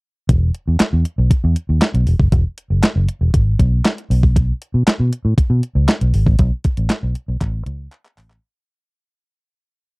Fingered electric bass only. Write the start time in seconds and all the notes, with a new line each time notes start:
0.29 E1
0.68 E2
0.81 muted fingered electric bass stroke
0.93 E2
1.18 B1
1.31 muted fingered electric bass stroke
1.44 E2
1.69 D#2
1.94 B1
2.07 E1
2.19 F#1
2.32 E1
2.70 F#1
2.96 F#1
3.21 E1
3.34 G#1
3.59 B1
4.10 B1
4.74 B2
4.87 muted fingered electric bass stroke
5.00 B2
5.25 A2
5.38 muted fingered electric bass stroke
5.50 B2
5.75 C#2
6.01 B1
6.14 G#1
6.26 A1
6.39 B1
6.78 A1
7.03 B1
7.28 B1
7.41 A1
7.66 C#2
8.18 A1